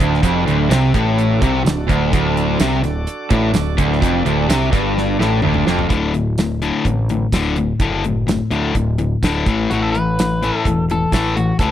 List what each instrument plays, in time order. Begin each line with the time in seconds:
Already playing: tonewheel organ F#4 A4 D5
0.00 picked electric bass D1, overdriven electric guitar D2, closed hi-hat
0.14 snare
0.23 picked electric bass F1, overdriven electric guitar F2, kick, closed hi-hat
0.46 picked electric bass D1, overdriven electric guitar D2, closed hi-hat
0.70 picked electric bass C2, overdriven electric guitar C3, snare, closed hi-hat, tambourine
0.94 picked electric bass A1, overdriven electric guitar A2, kick, closed hi-hat
1.18 closed hi-hat
1.42 picked electric bass C2, overdriven electric guitar C3, kick, closed hi-hat
1.65 picked electric bass D1, overdriven electric guitar D2, snare, closed hi-hat, tambourine
1.89 picked electric bass D1, overdriven electric guitar D2, kick, closed hi-hat
2.12 picked electric bass D1, overdriven electric guitar D2, tonewheel organ D4 F#4 A4 D5, kick, closed hi-hat
2.37 closed hi-hat
2.60 picked electric bass C2, overdriven electric guitar C3, snare, closed hi-hat, tambourine
2.83 picked electric bass D1, overdriven electric guitar D2, snare, closed hi-hat
3.07 closed hi-hat
3.30 picked electric bass A1, overdriven electric guitar A2, kick, closed hi-hat
3.53 picked electric bass D1, overdriven electric guitar D2, snare, closed hi-hat, tambourine
3.78 picked electric bass D1, overdriven electric guitar D2, kick, closed hi-hat
3.92 snare
4.02 picked electric bass F1, overdriven electric guitar F2, kick, closed hi-hat
4.25 picked electric bass D1, overdriven electric guitar D2, closed hi-hat
4.49 picked electric bass C2, overdriven electric guitar C3, snare, closed hi-hat, tambourine
4.72 picked electric bass G1, overdriven electric guitar G2, kick, snare, closed hi-hat
4.98 snare
5.20 picked electric bass A1, overdriven electric guitar A2, snare
5.42 picked electric bass D1, overdriven electric guitar D2, mid tom
5.54 mid tom
5.67 picked electric bass F1, overdriven electric guitar F2, snare
5.79 floor tom
5.89 picked electric bass D1, overdriven electric guitar D2 A2 D3, kick, closed hi-hat
6.14 overdriven electric guitar D2 A2, closed hi-hat
6.38 overdriven electric guitar D2 A2, snare, closed hi-hat, tambourine
6.62 overdriven electric guitar D2 A2 D3, closed hi-hat
6.85 picked electric bass A1, overdriven electric guitar D2 A2, kick, closed hi-hat
7.09 overdriven electric guitar D2 A2, closed hi-hat
7.32 picked electric bass D1, overdriven electric guitar D2 A2 D3, kick, snare, closed hi-hat, tambourine
7.56 overdriven electric guitar D2 A2, closed hi-hat
7.79 picked electric bass F#1, overdriven electric guitar D2 A2 D3, kick, closed hi-hat
8.04 overdriven electric guitar D2 A2, closed hi-hat
8.27 overdriven electric guitar D2 A2, snare, closed hi-hat, tambourine
8.51 overdriven electric guitar D2 A2 D3, picked electric bass D2, closed hi-hat
8.75 picked electric bass D1, overdriven electric guitar D2 A2, kick, closed hi-hat
8.98 overdriven electric guitar D2 A2, closed hi-hat
9.22 picked electric bass D1, overdriven electric guitar D2 A2 D3, kick, snare, closed hi-hat, tambourine
9.46 picked electric bass A1, overdriven electric guitar A2 E3 A3, kick, closed hi-hat
9.70 picked electric bass A1, overdriven electric guitar A2 E3 A3, lead electric guitar F#4, closed hi-hat
9.82 lead electric guitar A4
9.92 overdriven electric guitar A2, lead electric guitar B4, closed hi-hat
9.96 overdriven electric guitar E3
10.19 overdriven electric guitar A2 E3, snare, closed hi-hat, tambourine
10.42 overdriven electric guitar A2 E3 A3, closed hi-hat
10.58 lead electric guitar A4
10.65 picked electric bass E1, overdriven electric guitar A2 E3, kick, closed hi-hat
10.90 overdriven electric guitar A2 E3, lead electric guitar A4, closed hi-hat
11.12 picked electric bass A1, overdriven electric guitar A2 E3 A3, lead electric guitar A4, kick, snare, closed hi-hat, tambourine
11.36 overdriven electric guitar A2 E3, lead electric guitar F#4, closed hi-hat
11.59 picked electric bass C#2, overdriven electric guitar A2 E3 A3, lead electric guitar A4, kick, closed hi-hat